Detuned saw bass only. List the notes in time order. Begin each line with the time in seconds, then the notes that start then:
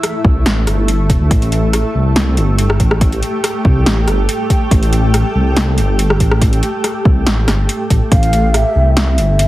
0.25 C2
0.46 A1
0.67 G1
1.10 E1
1.21 D2
1.31 A1
1.95 C2
2.38 G1
2.80 A1
3.65 C2
3.86 A1
4.08 G1
4.71 A1
5.35 C2
5.78 G1
6.20 A1
7.05 C2
7.27 A1
7.48 G1
7.90 A1
8.12 A1
8.76 C2
9.18 G1